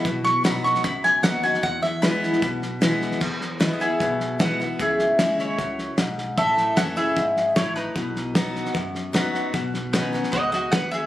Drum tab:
CC |----------------|----------------|x---------------|----------------|
HH |----p-------p---|----p-------p---|----p-------p---|----p-------p---|
SD |o-o-o-ooo-o-o-oo|o-o-o-ooo-o-o-oo|o-o-o-o-o-o-o-o-|o-o-o-o-o-o-o-o-|
BD |o-------o-------|o-------o-------|o---o---o---o---|o---o---o---o---|

CC |----------------|----------------|----------------|
HH |----p-------p---|----p-------p---|----p-------p---|
SD |o-o-o-o-o-o-o-o-|o-o-o-ooo-o-o-o-|o-o-o-ooo-o-o-o-|
BD |o---o---o---o---|o---o---o---o---|o---o---o---o---|